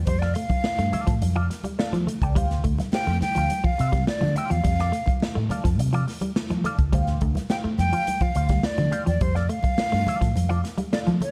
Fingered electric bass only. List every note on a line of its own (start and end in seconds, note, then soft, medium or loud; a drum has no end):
0.07 0.33 F2 loud
0.50 muted fingered electric bass stroke soft
0.79 0.92 G2 medium
1.08 1.21 A2 medium
1.22 1.47 F2 loud
1.93 2.06 F3 loud
2.22 2.36 C#2 medium
2.36 2.62 D2 loud
2.65 2.78 D2 loud
3.07 3.20 F2 medium
3.37 3.49 D2 medium
3.80 4.05 C3 medium
4.23 4.35 D3 loud
4.51 4.63 E2 medium
4.65 4.90 F2 loud
5.08 muted fingered electric bass stroke medium
5.37 5.49 A2 medium
5.65 5.80 F2 medium
5.80 6.05 C3 loud
6.51 6.63 F3 medium
6.79 6.92 C#2 loud
6.93 7.19 D2 loud
7.22 7.35 D2 loud
7.65 muted fingered electric bass stroke soft
7.78 7.91 F2 loud
8.36 8.61 D2 medium
8.78 8.91 D3 loud
9.07 9.20 E2 medium
9.21 9.47 F2 loud
9.64 muted fingered electric bass stroke soft
9.93 10.06 G2 medium
10.22 10.34 A2 medium
10.36 10.61 F2 loud
11.08 11.20 F3 loud